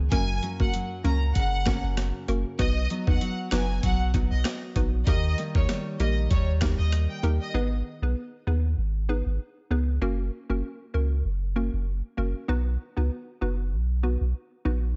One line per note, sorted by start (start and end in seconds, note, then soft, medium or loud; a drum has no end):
0.00 0.11 G#2 medium
0.00 0.19 D#3 medium
0.00 0.19 G#3 medium
0.00 0.19 B3 medium
0.00 0.19 D#4 medium
0.12 0.40 F#1 loud
0.12 2.59 F#2 medium
0.12 0.56 A#3 loud
0.12 0.56 C#4 medium
0.12 0.56 F#4 medium
0.12 0.56 A#4 loud
0.12 0.37 G#5 loud
0.12 kick loud
0.12 closed hi-hat medium
0.43 0.73 F#3 medium
0.43 1.04 A#3 medium
0.43 1.05 C#4 medium
0.43 closed hi-hat medium
0.60 0.72 F#1 medium
0.60 0.80 A#3 medium
0.60 0.80 C#4 medium
0.60 0.80 F#4 medium
0.60 0.80 A#4 medium
0.60 0.71 F#5 medium
0.60 kick loud
0.74 1.04 F#3 medium
0.74 closed hi-hat medium
1.04 1.33 C#2 medium
1.04 1.66 F#3 medium
1.04 1.27 A#3 medium
1.04 1.66 A#3 medium
1.04 1.27 C#4 medium
1.04 1.66 C#4 medium
1.04 1.27 F#4 medium
1.04 1.27 A#4 medium
1.04 1.19 A#5 medium
1.04 closed hi-hat soft
1.35 1.80 F#1 loud
1.35 2.59 C#3 medium
1.35 1.81 F#5 loud
1.35 kick loud
1.35 closed hi-hat medium
1.66 2.90 F#3 medium
1.66 1.88 A#3 medium
1.66 2.66 A#3 medium
1.66 1.89 C#4 medium
1.66 2.67 C#4 medium
1.66 1.89 F#4 medium
1.66 1.89 A#4 medium
1.66 kick loud
1.66 cross-stick medium
1.66 snare loud
1.66 closed hi-hat medium
1.84 2.12 F#1 medium
1.97 cross-stick loud
1.97 snare medium
1.97 closed hi-hat medium
2.28 2.44 F#1 medium
2.28 2.57 A#3 medium
2.28 2.57 C#4 medium
2.28 2.57 F#4 medium
2.28 2.57 A#4 medium
2.28 closed hi-hat soft
2.59 2.87 B1 loud
2.59 3.03 B3 loud
2.59 3.03 D#4 medium
2.59 3.03 F#4 medium
2.59 3.03 B4 loud
2.59 2.84 D#5 loud
2.59 kick loud
2.59 closed hi-hat medium
2.90 3.20 F#3 medium
2.90 3.51 B3 medium
2.90 3.53 D#4 medium
2.90 closed hi-hat medium
3.07 3.20 D#2 medium
3.07 3.27 B3 medium
3.07 3.27 D#4 medium
3.07 3.27 F#4 medium
3.07 3.27 B4 medium
3.07 3.33 F#5 medium
3.07 kick loud
3.21 3.51 F#3 medium
3.21 closed hi-hat medium
3.51 3.80 F#1 loud
3.51 3.82 F#3 medium
3.51 3.74 B3 medium
3.51 4.13 B3 medium
3.51 3.74 D#4 medium
3.51 4.15 D#4 medium
3.51 3.74 F#4 medium
3.51 3.74 B4 medium
3.51 3.77 G#5 medium
3.51 cross-stick loud
3.51 snare loud
3.51 closed hi-hat medium
3.83 4.27 B1 loud
3.83 4.13 F#3 medium
3.83 3.97 F#5 medium
3.83 kick loud
3.83 closed hi-hat medium
4.14 5.14 F#3 medium
4.14 4.36 B3 medium
4.14 5.14 B3 medium
4.14 4.36 D#4 medium
4.14 5.39 D#4 medium
4.14 4.36 F#4 medium
4.14 4.36 B4 medium
4.14 kick loud
4.14 closed hi-hat medium
4.31 4.44 B1 medium
4.31 4.42 D#5 medium
4.44 cross-stick loud
4.44 snare loud
4.44 closed hi-hat medium
4.76 5.04 A#1 medium
4.76 4.98 B3 medium
4.76 4.98 D#4 medium
4.76 4.98 F#4 medium
4.76 4.98 B4 medium
4.76 kick medium
4.76 closed hi-hat soft
5.07 5.35 D#2 loud
5.07 8.12 D#3 medium
5.07 5.51 A#3 medium
5.07 5.51 D#4 medium
5.07 5.51 G4 medium
5.07 5.51 A#4 loud
5.07 5.32 D#5 loud
5.07 kick loud
5.07 closed hi-hat medium
5.38 5.68 G3 medium
5.38 5.99 A#3 medium
5.38 6.00 D#4 medium
5.38 closed hi-hat medium
5.55 5.67 D#2 loud
5.55 5.75 A#3 medium
5.55 5.75 D#4 medium
5.55 5.75 G4 medium
5.55 5.75 A#4 medium
5.55 5.66 C#5 medium
5.55 kick loud
5.69 5.98 G3 medium
5.69 cross-stick medium
5.69 snare medium
5.69 closed hi-hat medium
6.00 6.28 A#1 medium
6.00 6.29 G3 medium
6.00 6.22 A#3 medium
6.00 6.61 A#3 medium
6.00 6.22 D#4 medium
6.00 6.62 D#4 medium
6.00 6.22 G4 medium
6.00 6.22 A#4 medium
6.00 6.14 D#5 medium
6.00 closed hi-hat medium
6.30 6.75 D#2 loud
6.30 6.60 G3 medium
6.30 6.44 C#5 medium
6.30 kick loud
6.30 closed hi-hat medium
6.61 7.61 G3 medium
6.61 6.83 A#3 medium
6.61 7.61 A#3 medium
6.61 6.83 D#4 medium
6.61 8.12 D#4 medium
6.61 6.83 G4 medium
6.61 6.84 A#4 medium
6.61 kick medium
6.61 cross-stick medium
6.61 snare loud
6.61 closed hi-hat medium
6.79 7.07 D#2 medium
6.79 6.90 D#5 medium
6.92 cross-stick medium
6.92 closed hi-hat medium
7.10 7.21 G5 medium
7.23 7.39 D#2 medium
7.23 7.52 A#3 medium
7.23 7.52 D#4 medium
7.23 7.52 G4 medium
7.23 7.52 A#4 medium
7.23 closed hi-hat soft
7.41 7.52 D#5 medium
7.54 7.82 G#1 loud
7.54 7.98 B3 medium
7.54 7.98 D#4 medium
7.54 7.98 G#4 medium
7.54 7.99 B4 loud
8.02 8.15 B1 medium
8.02 8.22 B3 medium
8.02 8.22 D#4 medium
8.02 8.22 G#4 medium
8.02 8.22 B4 medium
8.47 8.75 D#2 medium
8.47 8.69 B3 medium
8.47 8.69 D#4 medium
8.47 8.69 G#4 medium
8.47 8.69 B4 medium
8.78 9.22 G#1 loud
9.09 9.31 B3 medium
9.09 9.31 D#4 medium
9.09 9.31 G#4 medium
9.09 9.31 B4 medium
9.26 9.38 G#1 medium
9.70 9.99 C#2 medium
9.70 9.93 B3 medium
9.70 9.93 D#4 medium
9.70 9.93 G#4 medium
9.70 9.93 B4 medium
10.01 10.30 F#1 loud
10.01 10.46 A#3 medium
10.01 10.46 C#4 medium
10.01 10.46 F#4 medium
10.01 10.46 A#4 loud
10.50 10.62 F#1 medium
10.50 10.69 A#3 medium
10.50 10.69 C#4 medium
10.50 10.69 F#4 medium
10.50 10.70 A#4 medium
10.94 11.22 C#2 medium
10.94 11.16 A#3 medium
10.94 11.16 C#4 medium
10.94 11.16 F#4 medium
10.94 11.16 A#4 medium
11.25 11.69 F#1 loud
11.56 11.78 A#3 medium
11.56 11.78 C#4 medium
11.56 11.78 F#4 medium
11.56 11.78 A#4 medium
11.73 12.01 F#1 medium
12.17 12.34 F#1 medium
12.17 12.46 A#3 medium
12.17 12.47 C#4 medium
12.17 12.47 F#4 medium
12.17 12.47 A#4 medium
12.48 12.77 B1 loud
12.48 12.93 B3 medium
12.48 12.93 D#4 medium
12.48 12.93 F#4 medium
12.48 12.93 B4 loud
12.97 13.10 C#2 medium
12.97 13.17 B3 medium
12.97 13.17 D#4 medium
12.97 13.17 F#4 medium
12.97 13.17 B4 medium
13.41 13.74 F#1 medium
13.41 13.64 B3 medium
13.41 13.64 D#4 medium
13.41 13.64 F#4 medium
13.41 13.64 B4 medium
13.72 14.17 B1 loud
14.03 14.25 B3 medium
14.03 14.25 D#4 medium
14.03 14.26 F#4 medium
14.03 14.26 B4 medium
14.21 14.33 B1 medium
14.65 14.93 A#1 medium
14.65 14.87 B3 medium
14.65 14.87 D#4 medium
14.65 14.88 F#4 medium
14.65 14.88 B4 medium